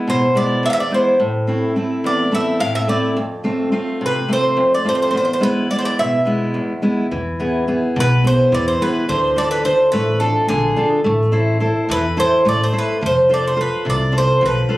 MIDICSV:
0, 0, Header, 1, 4, 480
1, 0, Start_track
1, 0, Tempo, 562324
1, 1036, Time_signature, 7, 3, 24, 8
1, 12612, End_track
2, 0, Start_track
2, 0, Title_t, "Bouzouki"
2, 0, Program_c, 0, 25
2, 82, Note_on_c, 0, 72, 73
2, 302, Note_off_c, 0, 72, 0
2, 315, Note_on_c, 0, 74, 71
2, 556, Note_off_c, 0, 74, 0
2, 560, Note_on_c, 0, 76, 90
2, 586, Note_off_c, 0, 76, 0
2, 597, Note_on_c, 0, 77, 74
2, 620, Note_off_c, 0, 77, 0
2, 624, Note_on_c, 0, 76, 90
2, 676, Note_off_c, 0, 76, 0
2, 685, Note_on_c, 0, 74, 70
2, 792, Note_off_c, 0, 74, 0
2, 806, Note_on_c, 0, 72, 61
2, 1024, Note_off_c, 0, 72, 0
2, 1762, Note_on_c, 0, 74, 65
2, 1983, Note_off_c, 0, 74, 0
2, 2002, Note_on_c, 0, 76, 78
2, 2219, Note_off_c, 0, 76, 0
2, 2223, Note_on_c, 0, 77, 92
2, 2346, Note_off_c, 0, 77, 0
2, 2350, Note_on_c, 0, 76, 73
2, 2465, Note_off_c, 0, 76, 0
2, 2469, Note_on_c, 0, 74, 60
2, 2696, Note_off_c, 0, 74, 0
2, 3464, Note_on_c, 0, 71, 69
2, 3675, Note_off_c, 0, 71, 0
2, 3694, Note_on_c, 0, 72, 76
2, 4047, Note_off_c, 0, 72, 0
2, 4050, Note_on_c, 0, 74, 65
2, 4156, Note_off_c, 0, 74, 0
2, 4171, Note_on_c, 0, 72, 78
2, 4216, Note_off_c, 0, 72, 0
2, 4226, Note_on_c, 0, 72, 58
2, 4278, Note_off_c, 0, 72, 0
2, 4288, Note_on_c, 0, 72, 60
2, 4349, Note_off_c, 0, 72, 0
2, 4359, Note_on_c, 0, 72, 60
2, 4406, Note_off_c, 0, 72, 0
2, 4416, Note_on_c, 0, 72, 60
2, 4469, Note_off_c, 0, 72, 0
2, 4480, Note_on_c, 0, 72, 49
2, 4543, Note_off_c, 0, 72, 0
2, 4553, Note_on_c, 0, 72, 63
2, 4614, Note_off_c, 0, 72, 0
2, 4637, Note_on_c, 0, 71, 78
2, 4868, Note_off_c, 0, 71, 0
2, 4872, Note_on_c, 0, 74, 80
2, 4930, Note_off_c, 0, 74, 0
2, 4939, Note_on_c, 0, 72, 66
2, 4993, Note_off_c, 0, 72, 0
2, 4996, Note_on_c, 0, 74, 82
2, 5108, Note_off_c, 0, 74, 0
2, 5115, Note_on_c, 0, 76, 82
2, 5801, Note_off_c, 0, 76, 0
2, 6831, Note_on_c, 0, 71, 88
2, 7038, Note_off_c, 0, 71, 0
2, 7061, Note_on_c, 0, 72, 86
2, 7272, Note_off_c, 0, 72, 0
2, 7294, Note_on_c, 0, 74, 97
2, 7396, Note_off_c, 0, 74, 0
2, 7407, Note_on_c, 0, 72, 80
2, 7524, Note_off_c, 0, 72, 0
2, 7530, Note_on_c, 0, 71, 82
2, 7757, Note_off_c, 0, 71, 0
2, 7760, Note_on_c, 0, 72, 81
2, 8004, Note_off_c, 0, 72, 0
2, 8008, Note_on_c, 0, 74, 87
2, 8113, Note_off_c, 0, 74, 0
2, 8116, Note_on_c, 0, 71, 82
2, 8233, Note_off_c, 0, 71, 0
2, 8237, Note_on_c, 0, 72, 76
2, 8458, Note_off_c, 0, 72, 0
2, 8465, Note_on_c, 0, 71, 86
2, 8692, Note_off_c, 0, 71, 0
2, 8706, Note_on_c, 0, 69, 72
2, 8946, Note_off_c, 0, 69, 0
2, 8950, Note_on_c, 0, 68, 69
2, 9285, Note_off_c, 0, 68, 0
2, 10170, Note_on_c, 0, 71, 90
2, 10384, Note_off_c, 0, 71, 0
2, 10412, Note_on_c, 0, 72, 86
2, 10625, Note_off_c, 0, 72, 0
2, 10658, Note_on_c, 0, 74, 90
2, 10767, Note_off_c, 0, 74, 0
2, 10786, Note_on_c, 0, 72, 77
2, 10881, Note_off_c, 0, 72, 0
2, 10914, Note_on_c, 0, 71, 81
2, 11116, Note_off_c, 0, 71, 0
2, 11149, Note_on_c, 0, 72, 81
2, 11354, Note_off_c, 0, 72, 0
2, 11384, Note_on_c, 0, 74, 84
2, 11490, Note_off_c, 0, 74, 0
2, 11502, Note_on_c, 0, 72, 75
2, 11609, Note_off_c, 0, 72, 0
2, 11616, Note_on_c, 0, 71, 76
2, 11827, Note_off_c, 0, 71, 0
2, 11862, Note_on_c, 0, 74, 81
2, 12070, Note_off_c, 0, 74, 0
2, 12102, Note_on_c, 0, 72, 78
2, 12310, Note_off_c, 0, 72, 0
2, 12340, Note_on_c, 0, 71, 69
2, 12612, Note_off_c, 0, 71, 0
2, 12612, End_track
3, 0, Start_track
3, 0, Title_t, "Steel-string acoustic guitar"
3, 0, Program_c, 1, 25
3, 0, Note_on_c, 1, 56, 40
3, 0, Note_on_c, 1, 59, 39
3, 0, Note_on_c, 1, 64, 43
3, 64, Note_on_c, 1, 47, 59
3, 209, Note_off_c, 1, 56, 0
3, 213, Note_off_c, 1, 59, 0
3, 214, Note_off_c, 1, 64, 0
3, 299, Note_on_c, 1, 56, 45
3, 303, Note_on_c, 1, 59, 43
3, 307, Note_on_c, 1, 64, 52
3, 536, Note_off_c, 1, 47, 0
3, 538, Note_on_c, 1, 40, 62
3, 690, Note_off_c, 1, 56, 0
3, 692, Note_off_c, 1, 59, 0
3, 694, Note_off_c, 1, 64, 0
3, 773, Note_on_c, 1, 56, 46
3, 779, Note_on_c, 1, 59, 44
3, 784, Note_on_c, 1, 64, 52
3, 975, Note_off_c, 1, 56, 0
3, 977, Note_off_c, 1, 59, 0
3, 981, Note_off_c, 1, 64, 0
3, 1013, Note_off_c, 1, 40, 0
3, 1021, Note_on_c, 1, 45, 69
3, 1257, Note_on_c, 1, 57, 43
3, 1258, Note_on_c, 1, 60, 44
3, 1268, Note_on_c, 1, 64, 52
3, 1491, Note_off_c, 1, 57, 0
3, 1492, Note_off_c, 1, 60, 0
3, 1494, Note_off_c, 1, 45, 0
3, 1495, Note_off_c, 1, 64, 0
3, 1500, Note_on_c, 1, 57, 38
3, 1504, Note_on_c, 1, 60, 40
3, 1505, Note_on_c, 1, 64, 47
3, 1743, Note_on_c, 1, 40, 63
3, 1891, Note_off_c, 1, 57, 0
3, 1892, Note_off_c, 1, 60, 0
3, 1894, Note_off_c, 1, 64, 0
3, 1975, Note_on_c, 1, 57, 45
3, 1979, Note_on_c, 1, 60, 40
3, 1984, Note_on_c, 1, 64, 54
3, 2216, Note_off_c, 1, 40, 0
3, 2221, Note_on_c, 1, 45, 67
3, 2368, Note_off_c, 1, 57, 0
3, 2370, Note_off_c, 1, 60, 0
3, 2374, Note_off_c, 1, 64, 0
3, 2453, Note_on_c, 1, 57, 44
3, 2460, Note_on_c, 1, 60, 46
3, 2462, Note_on_c, 1, 64, 56
3, 2655, Note_off_c, 1, 57, 0
3, 2659, Note_off_c, 1, 60, 0
3, 2659, Note_off_c, 1, 64, 0
3, 2695, Note_off_c, 1, 45, 0
3, 2702, Note_on_c, 1, 41, 67
3, 2935, Note_on_c, 1, 57, 44
3, 2941, Note_on_c, 1, 60, 40
3, 2941, Note_on_c, 1, 65, 50
3, 3164, Note_off_c, 1, 57, 0
3, 3170, Note_off_c, 1, 60, 0
3, 3171, Note_off_c, 1, 65, 0
3, 3175, Note_off_c, 1, 41, 0
3, 3175, Note_on_c, 1, 57, 45
3, 3179, Note_on_c, 1, 60, 38
3, 3184, Note_on_c, 1, 65, 51
3, 3423, Note_on_c, 1, 48, 61
3, 3568, Note_off_c, 1, 57, 0
3, 3571, Note_off_c, 1, 60, 0
3, 3572, Note_off_c, 1, 65, 0
3, 3658, Note_on_c, 1, 57, 45
3, 3663, Note_on_c, 1, 60, 42
3, 3668, Note_on_c, 1, 65, 51
3, 3896, Note_off_c, 1, 48, 0
3, 3898, Note_on_c, 1, 41, 66
3, 4050, Note_off_c, 1, 57, 0
3, 4053, Note_off_c, 1, 60, 0
3, 4055, Note_off_c, 1, 65, 0
3, 4137, Note_on_c, 1, 57, 47
3, 4146, Note_on_c, 1, 60, 42
3, 4147, Note_on_c, 1, 65, 53
3, 4339, Note_off_c, 1, 57, 0
3, 4340, Note_off_c, 1, 60, 0
3, 4344, Note_off_c, 1, 65, 0
3, 4373, Note_off_c, 1, 41, 0
3, 4383, Note_on_c, 1, 40, 63
3, 4613, Note_on_c, 1, 56, 43
3, 4616, Note_on_c, 1, 59, 41
3, 4621, Note_on_c, 1, 64, 49
3, 4856, Note_off_c, 1, 40, 0
3, 4856, Note_off_c, 1, 56, 0
3, 4861, Note_off_c, 1, 59, 0
3, 4865, Note_off_c, 1, 64, 0
3, 4866, Note_on_c, 1, 56, 39
3, 4871, Note_on_c, 1, 59, 41
3, 4875, Note_on_c, 1, 64, 44
3, 5113, Note_on_c, 1, 47, 57
3, 5254, Note_off_c, 1, 56, 0
3, 5257, Note_off_c, 1, 59, 0
3, 5260, Note_off_c, 1, 64, 0
3, 5338, Note_on_c, 1, 56, 45
3, 5344, Note_on_c, 1, 59, 42
3, 5350, Note_on_c, 1, 64, 54
3, 5580, Note_off_c, 1, 47, 0
3, 5583, Note_on_c, 1, 40, 58
3, 5730, Note_off_c, 1, 56, 0
3, 5733, Note_off_c, 1, 59, 0
3, 5736, Note_off_c, 1, 64, 0
3, 5823, Note_on_c, 1, 56, 47
3, 5827, Note_on_c, 1, 59, 41
3, 5829, Note_on_c, 1, 64, 52
3, 6021, Note_off_c, 1, 56, 0
3, 6022, Note_off_c, 1, 59, 0
3, 6024, Note_off_c, 1, 64, 0
3, 6055, Note_off_c, 1, 40, 0
3, 6073, Note_on_c, 1, 52, 62
3, 6313, Note_on_c, 1, 59, 47
3, 6318, Note_on_c, 1, 64, 45
3, 6319, Note_on_c, 1, 68, 49
3, 6540, Note_off_c, 1, 52, 0
3, 6542, Note_off_c, 1, 59, 0
3, 6543, Note_off_c, 1, 64, 0
3, 6548, Note_off_c, 1, 68, 0
3, 6552, Note_on_c, 1, 59, 43
3, 6554, Note_on_c, 1, 64, 42
3, 6558, Note_on_c, 1, 68, 46
3, 6796, Note_on_c, 1, 47, 64
3, 6937, Note_off_c, 1, 59, 0
3, 6938, Note_off_c, 1, 64, 0
3, 6941, Note_off_c, 1, 68, 0
3, 7030, Note_on_c, 1, 59, 49
3, 7035, Note_on_c, 1, 64, 43
3, 7038, Note_on_c, 1, 68, 56
3, 7261, Note_off_c, 1, 47, 0
3, 7273, Note_on_c, 1, 52, 71
3, 7416, Note_off_c, 1, 59, 0
3, 7418, Note_off_c, 1, 64, 0
3, 7421, Note_off_c, 1, 68, 0
3, 7520, Note_on_c, 1, 59, 48
3, 7524, Note_on_c, 1, 64, 46
3, 7529, Note_on_c, 1, 68, 58
3, 7710, Note_off_c, 1, 59, 0
3, 7712, Note_off_c, 1, 64, 0
3, 7715, Note_off_c, 1, 68, 0
3, 7739, Note_off_c, 1, 52, 0
3, 7755, Note_on_c, 1, 50, 65
3, 7992, Note_on_c, 1, 62, 45
3, 7995, Note_on_c, 1, 65, 40
3, 8000, Note_on_c, 1, 69, 52
3, 8220, Note_off_c, 1, 50, 0
3, 8223, Note_off_c, 1, 62, 0
3, 8229, Note_off_c, 1, 65, 0
3, 8232, Note_off_c, 1, 69, 0
3, 8233, Note_on_c, 1, 62, 40
3, 8238, Note_on_c, 1, 65, 37
3, 8244, Note_on_c, 1, 69, 46
3, 8479, Note_on_c, 1, 57, 70
3, 8617, Note_off_c, 1, 62, 0
3, 8620, Note_off_c, 1, 65, 0
3, 8622, Note_off_c, 1, 69, 0
3, 8709, Note_on_c, 1, 62, 45
3, 8712, Note_on_c, 1, 65, 44
3, 8719, Note_on_c, 1, 69, 50
3, 8941, Note_off_c, 1, 57, 0
3, 8957, Note_on_c, 1, 50, 68
3, 9095, Note_off_c, 1, 62, 0
3, 9095, Note_off_c, 1, 65, 0
3, 9097, Note_off_c, 1, 69, 0
3, 9188, Note_on_c, 1, 62, 50
3, 9191, Note_on_c, 1, 65, 46
3, 9197, Note_on_c, 1, 69, 55
3, 9381, Note_off_c, 1, 62, 0
3, 9383, Note_off_c, 1, 65, 0
3, 9387, Note_off_c, 1, 69, 0
3, 9420, Note_off_c, 1, 50, 0
3, 9426, Note_on_c, 1, 57, 68
3, 9663, Note_on_c, 1, 64, 48
3, 9669, Note_on_c, 1, 69, 42
3, 9670, Note_on_c, 1, 72, 52
3, 9894, Note_off_c, 1, 57, 0
3, 9894, Note_off_c, 1, 64, 0
3, 9899, Note_off_c, 1, 72, 0
3, 9900, Note_off_c, 1, 69, 0
3, 9904, Note_on_c, 1, 64, 48
3, 9910, Note_on_c, 1, 69, 40
3, 9910, Note_on_c, 1, 72, 50
3, 10147, Note_on_c, 1, 52, 64
3, 10291, Note_off_c, 1, 64, 0
3, 10294, Note_off_c, 1, 69, 0
3, 10294, Note_off_c, 1, 72, 0
3, 10388, Note_on_c, 1, 64, 51
3, 10388, Note_on_c, 1, 69, 47
3, 10394, Note_on_c, 1, 72, 54
3, 10614, Note_off_c, 1, 52, 0
3, 10629, Note_on_c, 1, 57, 65
3, 10773, Note_off_c, 1, 64, 0
3, 10773, Note_off_c, 1, 69, 0
3, 10776, Note_off_c, 1, 72, 0
3, 10861, Note_on_c, 1, 64, 46
3, 10866, Note_on_c, 1, 69, 46
3, 10870, Note_on_c, 1, 72, 57
3, 11057, Note_off_c, 1, 64, 0
3, 11059, Note_off_c, 1, 69, 0
3, 11062, Note_off_c, 1, 72, 0
3, 11095, Note_off_c, 1, 57, 0
3, 11108, Note_on_c, 1, 53, 62
3, 11347, Note_on_c, 1, 65, 44
3, 11352, Note_on_c, 1, 69, 41
3, 11358, Note_on_c, 1, 72, 54
3, 11570, Note_off_c, 1, 65, 0
3, 11570, Note_off_c, 1, 69, 0
3, 11574, Note_off_c, 1, 53, 0
3, 11575, Note_off_c, 1, 72, 0
3, 11579, Note_on_c, 1, 65, 44
3, 11583, Note_on_c, 1, 69, 39
3, 11585, Note_on_c, 1, 72, 45
3, 11822, Note_on_c, 1, 48, 66
3, 11968, Note_off_c, 1, 65, 0
3, 11968, Note_off_c, 1, 69, 0
3, 11971, Note_off_c, 1, 72, 0
3, 12053, Note_on_c, 1, 65, 52
3, 12059, Note_on_c, 1, 69, 45
3, 12059, Note_on_c, 1, 72, 57
3, 12291, Note_off_c, 1, 48, 0
3, 12300, Note_on_c, 1, 53, 65
3, 12444, Note_off_c, 1, 65, 0
3, 12445, Note_off_c, 1, 69, 0
3, 12447, Note_off_c, 1, 72, 0
3, 12537, Note_on_c, 1, 65, 52
3, 12540, Note_on_c, 1, 69, 44
3, 12546, Note_on_c, 1, 72, 50
3, 12612, Note_off_c, 1, 53, 0
3, 12612, Note_off_c, 1, 65, 0
3, 12612, Note_off_c, 1, 69, 0
3, 12612, Note_off_c, 1, 72, 0
3, 12612, End_track
4, 0, Start_track
4, 0, Title_t, "Upright bass"
4, 0, Program_c, 2, 32
4, 6077, Note_on_c, 2, 40, 80
4, 6580, Note_off_c, 2, 40, 0
4, 6798, Note_on_c, 2, 35, 82
4, 7133, Note_off_c, 2, 35, 0
4, 7277, Note_on_c, 2, 40, 83
4, 7444, Note_off_c, 2, 40, 0
4, 7758, Note_on_c, 2, 38, 81
4, 8260, Note_off_c, 2, 38, 0
4, 8474, Note_on_c, 2, 33, 80
4, 8809, Note_off_c, 2, 33, 0
4, 8962, Note_on_c, 2, 34, 83
4, 9127, Note_off_c, 2, 34, 0
4, 9444, Note_on_c, 2, 33, 81
4, 9943, Note_off_c, 2, 33, 0
4, 10155, Note_on_c, 2, 40, 83
4, 10489, Note_off_c, 2, 40, 0
4, 10639, Note_on_c, 2, 33, 78
4, 10804, Note_off_c, 2, 33, 0
4, 11119, Note_on_c, 2, 29, 88
4, 11619, Note_off_c, 2, 29, 0
4, 11832, Note_on_c, 2, 36, 74
4, 12167, Note_off_c, 2, 36, 0
4, 12316, Note_on_c, 2, 35, 72
4, 12482, Note_off_c, 2, 35, 0
4, 12612, End_track
0, 0, End_of_file